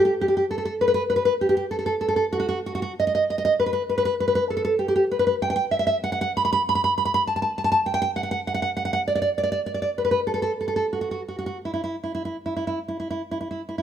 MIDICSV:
0, 0, Header, 1, 2, 480
1, 0, Start_track
1, 0, Key_signature, 1, "minor"
1, 0, Tempo, 606673
1, 339, Time_signature, 3, 2, 24, 8
1, 1776, Tempo, 683371
1, 2256, Tempo, 600000
1, 4176, Tempo, 650054
1, 5136, Tempo, 594059
1, 8016, Tempo, 655738
1, 8496, Tempo, 731707
1, 8976, Tempo, 802139
1, 10317, End_track
2, 0, Start_track
2, 0, Title_t, "Nylon-string guitar"
2, 0, Program_c, 0, 24
2, 40, Note_on_c, 0, 67, 76
2, 100, Note_off_c, 0, 67, 0
2, 169, Note_on_c, 0, 67, 67
2, 214, Note_off_c, 0, 67, 0
2, 223, Note_on_c, 0, 67, 66
2, 282, Note_off_c, 0, 67, 0
2, 291, Note_on_c, 0, 67, 71
2, 345, Note_off_c, 0, 67, 0
2, 401, Note_on_c, 0, 69, 71
2, 448, Note_off_c, 0, 69, 0
2, 458, Note_on_c, 0, 69, 72
2, 508, Note_off_c, 0, 69, 0
2, 518, Note_on_c, 0, 69, 76
2, 576, Note_off_c, 0, 69, 0
2, 641, Note_on_c, 0, 71, 67
2, 684, Note_off_c, 0, 71, 0
2, 694, Note_on_c, 0, 71, 78
2, 736, Note_off_c, 0, 71, 0
2, 746, Note_on_c, 0, 71, 88
2, 807, Note_off_c, 0, 71, 0
2, 868, Note_on_c, 0, 71, 69
2, 908, Note_off_c, 0, 71, 0
2, 918, Note_on_c, 0, 71, 70
2, 983, Note_off_c, 0, 71, 0
2, 991, Note_on_c, 0, 71, 80
2, 1050, Note_off_c, 0, 71, 0
2, 1117, Note_on_c, 0, 67, 62
2, 1170, Note_off_c, 0, 67, 0
2, 1180, Note_on_c, 0, 67, 70
2, 1231, Note_off_c, 0, 67, 0
2, 1240, Note_on_c, 0, 67, 68
2, 1296, Note_off_c, 0, 67, 0
2, 1352, Note_on_c, 0, 69, 62
2, 1404, Note_off_c, 0, 69, 0
2, 1414, Note_on_c, 0, 69, 63
2, 1462, Note_off_c, 0, 69, 0
2, 1471, Note_on_c, 0, 69, 69
2, 1532, Note_off_c, 0, 69, 0
2, 1589, Note_on_c, 0, 69, 64
2, 1640, Note_off_c, 0, 69, 0
2, 1649, Note_on_c, 0, 69, 69
2, 1701, Note_off_c, 0, 69, 0
2, 1711, Note_on_c, 0, 69, 69
2, 1774, Note_off_c, 0, 69, 0
2, 1833, Note_on_c, 0, 66, 73
2, 1874, Note_off_c, 0, 66, 0
2, 1882, Note_on_c, 0, 66, 83
2, 1937, Note_off_c, 0, 66, 0
2, 1945, Note_on_c, 0, 66, 80
2, 2010, Note_off_c, 0, 66, 0
2, 2070, Note_on_c, 0, 66, 69
2, 2122, Note_off_c, 0, 66, 0
2, 2130, Note_on_c, 0, 66, 74
2, 2173, Note_off_c, 0, 66, 0
2, 2181, Note_on_c, 0, 66, 84
2, 2248, Note_off_c, 0, 66, 0
2, 2310, Note_on_c, 0, 75, 73
2, 2360, Note_off_c, 0, 75, 0
2, 2370, Note_on_c, 0, 75, 77
2, 2422, Note_off_c, 0, 75, 0
2, 2432, Note_on_c, 0, 75, 81
2, 2498, Note_off_c, 0, 75, 0
2, 2555, Note_on_c, 0, 75, 69
2, 2609, Note_off_c, 0, 75, 0
2, 2618, Note_on_c, 0, 75, 77
2, 2663, Note_off_c, 0, 75, 0
2, 2672, Note_on_c, 0, 75, 87
2, 2736, Note_off_c, 0, 75, 0
2, 2790, Note_on_c, 0, 71, 72
2, 2835, Note_off_c, 0, 71, 0
2, 2844, Note_on_c, 0, 71, 75
2, 2887, Note_off_c, 0, 71, 0
2, 2897, Note_on_c, 0, 71, 78
2, 2968, Note_off_c, 0, 71, 0
2, 3029, Note_on_c, 0, 71, 72
2, 3085, Note_off_c, 0, 71, 0
2, 3095, Note_on_c, 0, 71, 81
2, 3146, Note_off_c, 0, 71, 0
2, 3155, Note_on_c, 0, 71, 82
2, 3220, Note_off_c, 0, 71, 0
2, 3277, Note_on_c, 0, 71, 72
2, 3325, Note_off_c, 0, 71, 0
2, 3335, Note_on_c, 0, 71, 83
2, 3386, Note_off_c, 0, 71, 0
2, 3395, Note_on_c, 0, 71, 87
2, 3461, Note_off_c, 0, 71, 0
2, 3517, Note_on_c, 0, 69, 73
2, 3558, Note_off_c, 0, 69, 0
2, 3568, Note_on_c, 0, 69, 80
2, 3621, Note_off_c, 0, 69, 0
2, 3630, Note_on_c, 0, 69, 80
2, 3696, Note_off_c, 0, 69, 0
2, 3745, Note_on_c, 0, 67, 66
2, 3812, Note_off_c, 0, 67, 0
2, 3820, Note_on_c, 0, 67, 73
2, 3869, Note_off_c, 0, 67, 0
2, 3879, Note_on_c, 0, 67, 78
2, 3938, Note_off_c, 0, 67, 0
2, 4006, Note_on_c, 0, 71, 73
2, 4058, Note_off_c, 0, 71, 0
2, 4068, Note_on_c, 0, 71, 78
2, 4118, Note_off_c, 0, 71, 0
2, 4127, Note_on_c, 0, 71, 75
2, 4181, Note_off_c, 0, 71, 0
2, 4245, Note_on_c, 0, 79, 82
2, 4294, Note_off_c, 0, 79, 0
2, 4302, Note_on_c, 0, 79, 77
2, 4337, Note_off_c, 0, 79, 0
2, 4345, Note_on_c, 0, 79, 91
2, 4401, Note_off_c, 0, 79, 0
2, 4460, Note_on_c, 0, 76, 71
2, 4510, Note_off_c, 0, 76, 0
2, 4519, Note_on_c, 0, 76, 76
2, 4565, Note_off_c, 0, 76, 0
2, 4574, Note_on_c, 0, 76, 78
2, 4641, Note_off_c, 0, 76, 0
2, 4699, Note_on_c, 0, 78, 82
2, 4753, Note_off_c, 0, 78, 0
2, 4762, Note_on_c, 0, 78, 83
2, 4820, Note_off_c, 0, 78, 0
2, 4829, Note_on_c, 0, 78, 94
2, 4896, Note_off_c, 0, 78, 0
2, 4944, Note_on_c, 0, 83, 81
2, 4994, Note_off_c, 0, 83, 0
2, 5003, Note_on_c, 0, 83, 88
2, 5051, Note_off_c, 0, 83, 0
2, 5060, Note_on_c, 0, 83, 100
2, 5126, Note_off_c, 0, 83, 0
2, 5185, Note_on_c, 0, 83, 78
2, 5227, Note_off_c, 0, 83, 0
2, 5237, Note_on_c, 0, 83, 82
2, 5297, Note_off_c, 0, 83, 0
2, 5307, Note_on_c, 0, 83, 87
2, 5372, Note_off_c, 0, 83, 0
2, 5418, Note_on_c, 0, 83, 80
2, 5471, Note_off_c, 0, 83, 0
2, 5480, Note_on_c, 0, 83, 85
2, 5541, Note_off_c, 0, 83, 0
2, 5551, Note_on_c, 0, 83, 90
2, 5612, Note_off_c, 0, 83, 0
2, 5658, Note_on_c, 0, 81, 66
2, 5718, Note_off_c, 0, 81, 0
2, 5728, Note_on_c, 0, 81, 68
2, 5767, Note_off_c, 0, 81, 0
2, 5777, Note_on_c, 0, 81, 74
2, 5842, Note_off_c, 0, 81, 0
2, 5905, Note_on_c, 0, 81, 70
2, 5947, Note_off_c, 0, 81, 0
2, 5956, Note_on_c, 0, 81, 74
2, 6006, Note_off_c, 0, 81, 0
2, 6016, Note_on_c, 0, 81, 80
2, 6078, Note_off_c, 0, 81, 0
2, 6133, Note_on_c, 0, 79, 76
2, 6185, Note_off_c, 0, 79, 0
2, 6195, Note_on_c, 0, 79, 89
2, 6248, Note_off_c, 0, 79, 0
2, 6258, Note_on_c, 0, 79, 94
2, 6318, Note_off_c, 0, 79, 0
2, 6374, Note_on_c, 0, 78, 77
2, 6423, Note_off_c, 0, 78, 0
2, 6432, Note_on_c, 0, 78, 78
2, 6486, Note_off_c, 0, 78, 0
2, 6496, Note_on_c, 0, 78, 91
2, 6558, Note_off_c, 0, 78, 0
2, 6627, Note_on_c, 0, 78, 73
2, 6675, Note_off_c, 0, 78, 0
2, 6685, Note_on_c, 0, 78, 78
2, 6737, Note_off_c, 0, 78, 0
2, 6747, Note_on_c, 0, 78, 82
2, 6805, Note_off_c, 0, 78, 0
2, 6864, Note_on_c, 0, 78, 73
2, 6922, Note_off_c, 0, 78, 0
2, 6932, Note_on_c, 0, 78, 78
2, 6987, Note_off_c, 0, 78, 0
2, 6996, Note_on_c, 0, 78, 84
2, 7052, Note_off_c, 0, 78, 0
2, 7114, Note_on_c, 0, 74, 75
2, 7167, Note_off_c, 0, 74, 0
2, 7177, Note_on_c, 0, 74, 82
2, 7219, Note_off_c, 0, 74, 0
2, 7228, Note_on_c, 0, 74, 82
2, 7288, Note_off_c, 0, 74, 0
2, 7359, Note_on_c, 0, 74, 76
2, 7394, Note_off_c, 0, 74, 0
2, 7404, Note_on_c, 0, 74, 81
2, 7461, Note_off_c, 0, 74, 0
2, 7471, Note_on_c, 0, 74, 89
2, 7529, Note_off_c, 0, 74, 0
2, 7588, Note_on_c, 0, 74, 66
2, 7644, Note_off_c, 0, 74, 0
2, 7654, Note_on_c, 0, 74, 71
2, 7705, Note_off_c, 0, 74, 0
2, 7715, Note_on_c, 0, 74, 69
2, 7772, Note_off_c, 0, 74, 0
2, 7845, Note_on_c, 0, 71, 66
2, 7888, Note_off_c, 0, 71, 0
2, 7898, Note_on_c, 0, 71, 70
2, 7941, Note_off_c, 0, 71, 0
2, 7950, Note_on_c, 0, 71, 68
2, 8014, Note_off_c, 0, 71, 0
2, 8072, Note_on_c, 0, 69, 61
2, 8114, Note_off_c, 0, 69, 0
2, 8123, Note_on_c, 0, 69, 69
2, 8176, Note_off_c, 0, 69, 0
2, 8184, Note_on_c, 0, 69, 74
2, 8246, Note_off_c, 0, 69, 0
2, 8319, Note_on_c, 0, 69, 60
2, 8363, Note_off_c, 0, 69, 0
2, 8371, Note_on_c, 0, 69, 65
2, 8423, Note_off_c, 0, 69, 0
2, 8432, Note_on_c, 0, 69, 69
2, 8495, Note_off_c, 0, 69, 0
2, 8548, Note_on_c, 0, 66, 57
2, 8595, Note_off_c, 0, 66, 0
2, 8603, Note_on_c, 0, 66, 61
2, 8661, Note_off_c, 0, 66, 0
2, 8669, Note_on_c, 0, 66, 63
2, 8729, Note_off_c, 0, 66, 0
2, 8782, Note_on_c, 0, 66, 58
2, 8841, Note_off_c, 0, 66, 0
2, 8849, Note_on_c, 0, 66, 60
2, 8891, Note_off_c, 0, 66, 0
2, 8899, Note_on_c, 0, 66, 64
2, 8969, Note_off_c, 0, 66, 0
2, 9019, Note_on_c, 0, 64, 54
2, 9062, Note_off_c, 0, 64, 0
2, 9069, Note_on_c, 0, 64, 57
2, 9122, Note_off_c, 0, 64, 0
2, 9130, Note_on_c, 0, 64, 61
2, 9198, Note_off_c, 0, 64, 0
2, 9249, Note_on_c, 0, 64, 49
2, 9308, Note_off_c, 0, 64, 0
2, 9315, Note_on_c, 0, 64, 57
2, 9371, Note_off_c, 0, 64, 0
2, 9378, Note_on_c, 0, 64, 65
2, 9440, Note_off_c, 0, 64, 0
2, 9501, Note_on_c, 0, 64, 51
2, 9558, Note_off_c, 0, 64, 0
2, 9565, Note_on_c, 0, 64, 58
2, 9622, Note_off_c, 0, 64, 0
2, 9629, Note_on_c, 0, 64, 55
2, 9695, Note_off_c, 0, 64, 0
2, 9757, Note_on_c, 0, 64, 49
2, 9817, Note_off_c, 0, 64, 0
2, 9824, Note_on_c, 0, 64, 57
2, 9881, Note_off_c, 0, 64, 0
2, 9889, Note_on_c, 0, 64, 59
2, 9951, Note_off_c, 0, 64, 0
2, 10014, Note_on_c, 0, 64, 51
2, 10062, Note_off_c, 0, 64, 0
2, 10069, Note_on_c, 0, 64, 52
2, 10122, Note_off_c, 0, 64, 0
2, 10129, Note_on_c, 0, 64, 55
2, 10188, Note_off_c, 0, 64, 0
2, 10237, Note_on_c, 0, 64, 52
2, 10286, Note_off_c, 0, 64, 0
2, 10294, Note_on_c, 0, 64, 56
2, 10317, Note_off_c, 0, 64, 0
2, 10317, End_track
0, 0, End_of_file